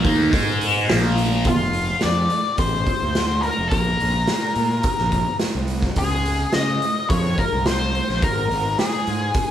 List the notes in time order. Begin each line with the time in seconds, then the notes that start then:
0.04 D#2 D#3 A#3 D#4, kick, open hi-hat
0.32 G#2 G#3 D#4 G#4, kick, open hi-hat
0.61 open hi-hat
0.89 A#1 A#2 F3 A#3, snare, open hi-hat
1.17 open hi-hat
1.44 F1 F4, kick, open hi-hat
1.73 open hi-hat
2.01 F2 D5, snare, open hi-hat
2.30 open hi-hat
2.58 A1 C5, kick, open hi-hat
2.87 kick, open hi-hat
3.02 D2
3.15 snare, open hi-hat
3.42 A#4, open hi-hat
3.58 F1
3.69 A#1 A#4, kick, open hi-hat
4.00 A#1, open hi-hat
4.27 snare, open hi-hat
4.55 A#2, open hi-hat
4.83 kick, open hi-hat
4.98 A#1, snare
5.12 kick, open hi-hat
5.40 snare, open hi-hat
5.55 C2
5.68 open hi-hat
5.82 kick, snare
5.96 C#2 G#4, kick, open hi-hat
6.25 open hi-hat
6.53 C#3 D#5, snare, open hi-hat
6.82 open hi-hat
7.09 F2 C#5, kick, open hi-hat
7.38 A#4, kick, open hi-hat
7.52 C2
7.66 C5, snare, open hi-hat
7.95 open hi-hat
8.09 A#1, snare
8.22 G#1 A#4, kick, open hi-hat
8.51 G#1, open hi-hat
8.79 G#4, snare, open hi-hat
9.07 G#2, open hi-hat
9.34 kick, open hi-hat